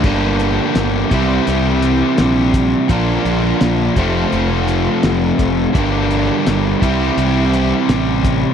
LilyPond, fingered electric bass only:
\new Staff \with { instrumentName = "Fingered electric bass" } { \clef bass \time 4/4 \key g \dorian \tempo 4 = 84 g,,4 g,,8 c,8 c,4 bes,,4 | bes,,8 bes,,8 bes,,8 f,,8 f,,4 f,,8 f,,8 | g,,4 g,,8 c,8 c,4 a,,4 | }